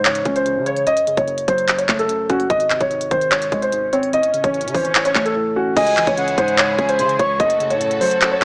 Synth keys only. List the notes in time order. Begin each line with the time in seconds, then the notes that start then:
Already playing: C#3 E3 G#3
0.05 C#3
0.26 C#4
0.46 C#3
0.67 C#5
0.87 F#2
1.07 C#3
1.28 F#2
1.48 F#3
1.68 F#2
1.89 A3
2.09 F#2
2.30 C#4
2.50 G#2
2.70 C3
2.91 G#2
3.11 D#3
3.32 G#2
3.52 G#3
3.72 G#2
3.93 C4
4.13 A2
4.34 C#3
4.54 A2
4.75 E3
4.95 A2
5.15 A3
5.36 A2
5.56 C#4
5.77 C#3
5.97 E3
6.17 C#3
6.38 G#3
6.58 C#3
6.79 C#4
6.99 C#3
7.19 C#5
7.40 F#2
7.60 C#3
7.81 F#2
8.01 F#3
8.21 F#2